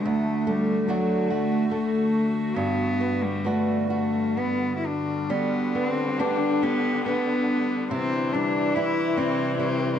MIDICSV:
0, 0, Header, 1, 5, 480
1, 0, Start_track
1, 0, Tempo, 840336
1, 32, Time_signature, 3, 2, 24, 8
1, 1472, Tempo, 906344
1, 3392, Tempo, 846262
1, 5540, End_track
2, 0, Start_track
2, 0, Title_t, "Cello"
2, 0, Program_c, 0, 42
2, 30, Note_on_c, 0, 57, 86
2, 234, Note_off_c, 0, 57, 0
2, 234, Note_on_c, 0, 57, 62
2, 278, Note_on_c, 0, 55, 74
2, 287, Note_off_c, 0, 57, 0
2, 469, Note_off_c, 0, 55, 0
2, 469, Note_on_c, 0, 55, 56
2, 512, Note_on_c, 0, 54, 74
2, 520, Note_off_c, 0, 55, 0
2, 745, Note_on_c, 0, 57, 76
2, 754, Note_off_c, 0, 54, 0
2, 980, Note_off_c, 0, 57, 0
2, 984, Note_on_c, 0, 57, 73
2, 1465, Note_on_c, 0, 59, 80
2, 1474, Note_off_c, 0, 57, 0
2, 1820, Note_on_c, 0, 55, 76
2, 1828, Note_off_c, 0, 59, 0
2, 1942, Note_on_c, 0, 57, 79
2, 1950, Note_off_c, 0, 55, 0
2, 2177, Note_off_c, 0, 57, 0
2, 2180, Note_on_c, 0, 57, 72
2, 2429, Note_on_c, 0, 59, 78
2, 2437, Note_off_c, 0, 57, 0
2, 2629, Note_off_c, 0, 59, 0
2, 2632, Note_on_c, 0, 64, 57
2, 2679, Note_on_c, 0, 62, 65
2, 2687, Note_off_c, 0, 64, 0
2, 2915, Note_on_c, 0, 59, 73
2, 2923, Note_off_c, 0, 62, 0
2, 3158, Note_on_c, 0, 60, 77
2, 3166, Note_off_c, 0, 59, 0
2, 3386, Note_on_c, 0, 62, 79
2, 3394, Note_off_c, 0, 60, 0
2, 3636, Note_on_c, 0, 59, 86
2, 3644, Note_off_c, 0, 62, 0
2, 3875, Note_off_c, 0, 59, 0
2, 3878, Note_on_c, 0, 59, 78
2, 4340, Note_off_c, 0, 59, 0
2, 4365, Note_on_c, 0, 60, 88
2, 4597, Note_on_c, 0, 62, 85
2, 4605, Note_off_c, 0, 60, 0
2, 4834, Note_on_c, 0, 64, 99
2, 4842, Note_off_c, 0, 62, 0
2, 5075, Note_on_c, 0, 60, 86
2, 5084, Note_off_c, 0, 64, 0
2, 5307, Note_off_c, 0, 60, 0
2, 5310, Note_on_c, 0, 60, 84
2, 5532, Note_off_c, 0, 60, 0
2, 5540, End_track
3, 0, Start_track
3, 0, Title_t, "Nylon-string guitar"
3, 0, Program_c, 1, 24
3, 0, Note_on_c, 1, 57, 61
3, 0, Note_on_c, 1, 59, 56
3, 0, Note_on_c, 1, 62, 59
3, 32, Note_on_c, 1, 38, 70
3, 79, Note_off_c, 1, 59, 0
3, 268, Note_off_c, 1, 57, 0
3, 268, Note_on_c, 1, 57, 58
3, 498, Note_off_c, 1, 57, 0
3, 505, Note_on_c, 1, 57, 58
3, 509, Note_off_c, 1, 62, 0
3, 509, Note_on_c, 1, 62, 61
3, 512, Note_on_c, 1, 66, 66
3, 742, Note_off_c, 1, 66, 0
3, 744, Note_on_c, 1, 66, 57
3, 972, Note_off_c, 1, 57, 0
3, 979, Note_on_c, 1, 57, 50
3, 1462, Note_off_c, 1, 38, 0
3, 1464, Note_on_c, 1, 43, 67
3, 1516, Note_off_c, 1, 57, 0
3, 1698, Note_on_c, 1, 59, 56
3, 1930, Note_off_c, 1, 59, 0
3, 1932, Note_on_c, 1, 59, 54
3, 1936, Note_off_c, 1, 62, 0
3, 1938, Note_on_c, 1, 62, 49
3, 1939, Note_off_c, 1, 66, 0
3, 1941, Note_on_c, 1, 66, 55
3, 2167, Note_off_c, 1, 66, 0
3, 2173, Note_on_c, 1, 66, 54
3, 2420, Note_off_c, 1, 59, 0
3, 2422, Note_on_c, 1, 59, 46
3, 2913, Note_on_c, 1, 55, 62
3, 2915, Note_off_c, 1, 43, 0
3, 2963, Note_off_c, 1, 66, 0
3, 3151, Note_off_c, 1, 59, 0
3, 3153, Note_on_c, 1, 59, 50
3, 3382, Note_off_c, 1, 59, 0
3, 3388, Note_on_c, 1, 59, 59
3, 3389, Note_off_c, 1, 62, 0
3, 3391, Note_on_c, 1, 62, 59
3, 3393, Note_on_c, 1, 67, 57
3, 3631, Note_off_c, 1, 67, 0
3, 3633, Note_on_c, 1, 67, 61
3, 3871, Note_off_c, 1, 59, 0
3, 3878, Note_on_c, 1, 59, 52
3, 4360, Note_on_c, 1, 48, 66
3, 4411, Note_off_c, 1, 59, 0
3, 4411, Note_off_c, 1, 62, 0
3, 4607, Note_off_c, 1, 55, 0
3, 4607, Note_on_c, 1, 55, 62
3, 4838, Note_off_c, 1, 55, 0
3, 4841, Note_on_c, 1, 55, 61
3, 4845, Note_off_c, 1, 67, 0
3, 4846, Note_on_c, 1, 60, 60
3, 4847, Note_on_c, 1, 64, 60
3, 5072, Note_off_c, 1, 64, 0
3, 5079, Note_on_c, 1, 64, 63
3, 5313, Note_off_c, 1, 55, 0
3, 5315, Note_on_c, 1, 55, 58
3, 5540, Note_off_c, 1, 48, 0
3, 5540, Note_off_c, 1, 55, 0
3, 5540, Note_off_c, 1, 60, 0
3, 5540, Note_off_c, 1, 64, 0
3, 5540, End_track
4, 0, Start_track
4, 0, Title_t, "Ambient pad"
4, 0, Program_c, 2, 92
4, 0, Note_on_c, 2, 57, 63
4, 25, Note_on_c, 2, 50, 76
4, 28, Note_on_c, 2, 66, 78
4, 1448, Note_off_c, 2, 57, 0
4, 1453, Note_off_c, 2, 50, 0
4, 1463, Note_on_c, 2, 55, 67
4, 1469, Note_on_c, 2, 50, 68
4, 2895, Note_off_c, 2, 66, 0
4, 2917, Note_on_c, 2, 62, 74
4, 4340, Note_off_c, 2, 50, 0
4, 4348, Note_off_c, 2, 62, 0
4, 4352, Note_on_c, 2, 64, 78
4, 4353, Note_on_c, 2, 48, 72
4, 5540, Note_off_c, 2, 48, 0
4, 5540, Note_off_c, 2, 55, 0
4, 5540, Note_off_c, 2, 64, 0
4, 5540, End_track
5, 0, Start_track
5, 0, Title_t, "Viola"
5, 0, Program_c, 3, 41
5, 2920, Note_on_c, 3, 50, 68
5, 4363, Note_on_c, 3, 52, 81
5, 4371, Note_off_c, 3, 50, 0
5, 5540, Note_off_c, 3, 52, 0
5, 5540, End_track
0, 0, End_of_file